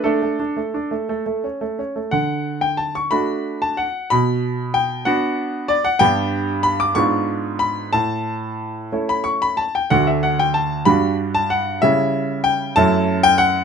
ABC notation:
X:1
M:6/8
L:1/16
Q:3/8=62
K:D
V:1 name="Grand piano"
[DA]8- [DA]2 z2 | f3 g a c' b3 a f2 | b4 g2 f4 d f | g4 b d' c'4 b2 |
a6- a b c' b a g | f e f g a2 b3 a f2 | e4 g2 a3 g f2 |]
V:2 name="Grand piano"
A, A, D A, D A, A, A, C A, C A, | D,6 [A,DF]6 | B,,6 [B,DF]6 | [G,,B,DG]6 [^G,,B,D^E]6 |
A,,6 [A,CE]6 | [D,,A,DF]6 [G,,G,DF]6 | [C,G,CE]6 [F,,A,CE]6 |]